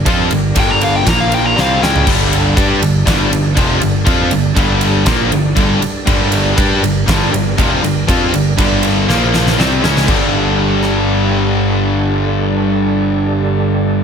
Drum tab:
CC |----------------|x---------------|----------------|----------------|
RD |x-x-x-x-x-x-----|--x-x-x-x-x-x-x-|x-x-x-x-x-x-x-x-|x-x-x-x-x-x-x-x-|
SD |--------o---o-o-|--------o-------|--------o-------|--------o-------|
FT |---------------o|----------------|----------------|----------------|
BD |o---o---o-------|o---o---o---o---|o---o---o---o---|o---o---o---o---|

CC |----------------|x---------------|----------------|
RD |x-x-x-x---------|----------------|----------------|
SD |--------o-ooo-oo|------r---------|----------------|
FT |----------------|----------------|----------------|
BD |o---o-----------|o---------------|----------------|